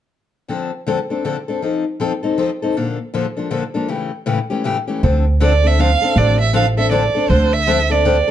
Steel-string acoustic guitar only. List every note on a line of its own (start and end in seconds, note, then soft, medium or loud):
0.48 0.70 D3 soft
0.48 0.70 F3 soft
0.48 0.70 C4 soft
0.48 0.70 D4 soft
0.48 0.71 A4 soft
0.87 0.98 D3 medium
0.87 0.98 F3 medium
0.87 0.98 C4 medium
0.87 0.98 D4 medium
0.87 0.99 A4 medium
1.10 1.24 C4 soft
1.10 1.24 D4 soft
1.10 1.24 A4 soft
1.24 1.36 D3 medium
1.24 1.36 F3 medium
1.24 1.36 C4 medium
1.24 1.36 D4 medium
1.24 1.36 A4 medium
1.48 1.62 C4 soft
1.48 1.63 D4 soft
1.48 1.62 A4 soft
1.62 1.84 F3 soft
1.62 1.84 C4 soft
1.62 1.84 D#4 medium
1.62 1.84 A4 medium
2.00 2.11 F3 medium
2.00 2.12 C4 medium
2.00 2.12 D#4 medium
2.00 2.12 A4 medium
2.23 2.37 C4 soft
2.23 2.38 D#4 soft
2.23 2.37 A4 soft
2.38 2.49 F3 medium
2.38 2.49 C4 medium
2.38 2.50 D#4 medium
2.38 2.50 A4 medium
2.62 2.77 C4 soft
2.62 2.76 D#4 soft
2.62 2.76 A4 soft
2.76 2.97 A#2 soft
2.76 2.97 D3 soft
2.76 2.98 F3 medium
2.76 2.98 A#3 medium
2.76 2.98 D4 medium
2.76 2.98 A4 medium
3.14 3.25 A#2 medium
3.14 3.25 D3 medium
3.14 3.25 F3 medium
3.14 3.25 A#3 medium
3.14 3.25 D4 medium
3.14 3.26 A4 medium
3.37 3.50 F3 soft
3.37 3.50 A#3 soft
3.37 3.50 D4 soft
3.37 3.50 A4 soft
3.50 3.62 A#2 medium
3.50 3.62 D3 medium
3.50 3.63 F3 medium
3.50 3.63 A#3 medium
3.50 3.63 D4 medium
3.50 3.63 A4 medium
3.74 3.89 F3 soft
3.74 3.89 A#3 soft
3.74 3.89 D4 soft
3.74 3.88 A4 soft
3.88 4.10 A2 medium
3.88 4.10 C#3 medium
3.88 4.10 E3 medium
3.88 4.11 A3 medium
3.88 4.10 C#4 soft
3.88 4.11 G4 medium
4.26 4.38 A2 medium
4.26 4.38 C#3 medium
4.26 4.38 E3 medium
4.26 4.38 A3 medium
4.26 4.38 C#4 medium
4.26 4.38 G4 medium
4.50 4.64 E3 soft
4.50 4.64 A3 soft
4.50 4.64 C#4 soft
4.50 4.64 G4 soft
4.64 4.76 A2 medium
4.64 4.76 C#3 medium
4.64 4.76 E3 medium
4.64 4.76 A3 medium
4.64 4.76 C#4 medium
4.64 4.76 G4 medium
4.88 5.03 E3 soft
4.88 5.03 A3 soft
4.88 5.02 C#4 soft
4.88 5.02 G4 soft
5.03 5.24 D3 medium
5.03 5.24 F3 medium
5.03 5.24 C4 medium
5.03 5.24 D4 medium
5.03 5.25 A4 medium
5.40 5.52 D3 medium
5.40 5.52 F3 medium
5.40 5.52 C4 medium
5.40 5.52 D4 medium
5.40 5.52 A4 medium
5.64 5.78 C4 soft
5.64 5.78 D4 soft
5.64 5.78 A4 soft
5.79 5.90 D3 medium
5.79 5.90 F3 medium
5.79 5.90 C4 medium
5.79 5.90 D4 medium
5.79 5.90 A4 medium
6.02 6.15 C4 soft
6.02 6.15 D4 soft
6.02 6.15 A4 medium
6.16 6.37 D3 medium
6.16 6.37 F3 medium
6.16 6.37 C4 medium
6.16 6.38 D4 medium
6.16 6.37 A4 medium
6.53 6.65 D3 medium
6.53 6.65 F3 medium
6.53 6.65 C4 medium
6.53 6.65 D4 loud
6.53 6.65 A4 loud
6.77 6.91 C4 soft
6.77 6.90 D4 soft
6.77 6.91 A4 soft
6.91 7.02 D3 medium
6.91 7.03 F3 medium
6.91 7.03 C4 medium
6.91 7.03 D4 medium
6.91 7.03 A4 medium
7.15 7.29 C4 soft
7.15 7.29 D4 soft
7.15 7.29 A4 medium
7.30 7.51 D3 medium
7.30 7.51 F3 medium
7.30 7.51 C4 medium
7.30 7.51 D4 medium
7.30 7.51 A4 medium
7.67 7.78 D3 medium
7.67 7.78 F3 medium
7.67 7.78 C4 medium
7.67 7.79 D4 medium
7.67 7.79 A4 medium
7.90 8.04 C4 soft
7.90 8.05 D4 soft
7.90 8.04 A4 medium
8.05 8.16 D3 medium
8.05 8.16 F3 medium
8.05 8.16 C4 medium
8.05 8.17 D4 medium
8.05 8.17 A4 medium
8.28 8.31 A4 medium